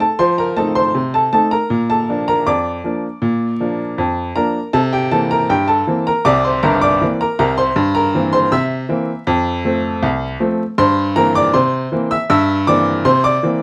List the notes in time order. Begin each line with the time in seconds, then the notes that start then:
0.00 A4 A5
0.19 F3 C5 C6
0.38 A#4 A#5
0.57 A3 C4 D#4 A4 A5
0.75 C5 C6
0.95 C3
1.14 A4 A5
1.33 A3 C4 D#4 A4 A5
1.51 A#4 A#5
1.70 A#2
1.90 A4 A5
2.09 F3 A#3 D4
2.28 A#4 A#5
2.47 F2 D5 D6
2.84 F3 A#3 D4
3.22 A#2
3.60 F3 A#3 D4
3.98 F2
4.36 F3 A#3 D4 A#4 A#5
4.73 C3 A4 A5
4.93 G4 G5
5.11 E3 A#3 C4 A4 A5
5.31 A#4 A#5
5.50 G2 G4 G5
5.68 A4 A5
5.87 E3 A#3 C4
6.07 A#4 A#5
6.25 C2 C3 D5 D6
6.44 C5 C6
6.63 G1 G2 A#4 A#5
6.81 D5 D6
7.01 E3 A#3 C4
7.21 A#4 A#5
7.39 C2 C3 A#4 A#5
7.58 C5 C6
7.76 G2
7.95 A#4 A#5
8.15 E3 A#3 C4
8.33 C5 C6
8.52 C3 E5 E6
8.89 E3 A#3 C4
9.27 F2
9.65 F3 A3 C4
10.03 C2
10.40 F3 A3 C4
10.78 G2 C5 C6
11.16 E3 A#3 C4 A#4 A#5
11.35 D5 D6
11.54 C3 C5 C6
11.92 E3 A#3 C4
12.11 E5 E6
12.30 G2 E5 E6
12.67 E3 A#3 C4 D5 D6
13.05 C3 C5 C6
13.24 D5 D6
13.43 E3 A#3 C4